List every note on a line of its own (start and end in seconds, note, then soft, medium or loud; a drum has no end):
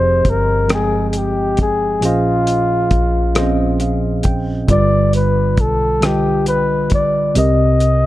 0.00 0.21 F1 medium
0.00 0.47 F3 medium
0.00 0.47 C4 medium
0.00 0.48 G4 medium
0.00 0.48 G#4 medium
0.00 0.31 C5 medium
0.00 2.04 C5 soft
0.00 0.49 D#5 medium
0.25 2.03 G1 medium
0.25 kick medium
0.25 closed hi-hat soft
0.30 0.71 A#4 medium
0.68 1.79 F3 soft
0.68 1.81 G#3 soft
0.68 1.80 C4 soft
0.68 1.81 G5 soft
0.68 cross-stick medium
0.68 closed hi-hat medium
0.73 1.09 G#4 medium
0.73 1.82 D#5 medium
1.09 1.20 G#4 soft
1.13 closed hi-hat soft
1.18 1.60 G4 medium
1.57 kick medium
1.57 closed hi-hat soft
1.62 2.01 G#4 medium
2.01 2.88 A#1 medium
2.01 3.12 A#2 medium
2.01 3.12 F3 medium
2.01 3.13 C#4 medium
2.01 3.14 G#4 medium
2.01 closed hi-hat medium
2.05 3.78 F4 medium
2.05 3.14 C5 medium
2.05 3.15 D#5 medium
2.47 closed hi-hat soft
2.91 4.65 A#1 medium
2.91 kick medium
2.91 closed hi-hat soft
3.34 4.46 A#2 medium
3.34 4.46 F3 medium
3.34 3.42 C4 soft
3.34 4.47 G#4 medium
3.34 4.48 C5 medium
3.34 cross-stick medium
3.34 closed hi-hat medium
3.39 4.50 C#4 medium
3.39 4.48 D#5 medium
3.80 4.22 F5 medium
3.80 closed hi-hat soft
4.23 4.66 G5 medium
4.23 kick medium
4.23 closed hi-hat soft
4.68 5.58 G1 medium
4.68 5.80 D3 medium
4.68 5.79 G3 medium
4.68 5.80 F4 medium
4.68 5.81 B4 medium
4.68 5.11 D5 medium
4.68 kick medium
4.68 closed hi-hat medium
4.73 5.82 D5 medium
5.13 5.62 B4 medium
5.13 closed hi-hat soft
5.57 7.32 B1 medium
5.57 6.06 A4 medium
5.57 kick medium
5.57 closed hi-hat soft
6.01 7.13 D3 medium
6.01 7.12 G3 medium
6.01 7.14 F4 soft
6.01 7.14 B4 soft
6.01 cross-stick medium
6.01 closed hi-hat medium
6.05 6.48 G4 medium
6.05 7.15 D#5 medium
6.46 6.89 B4 medium
6.46 closed hi-hat soft
6.90 kick medium
6.90 closed hi-hat soft
6.94 7.34 D5 medium
7.34 8.06 C2 medium
7.34 8.06 C3 medium
7.34 8.06 C4 medium
7.34 8.06 G4 medium
7.34 8.06 A#4 medium
7.34 closed hi-hat medium
7.38 8.06 D#5 medium
7.80 closed hi-hat soft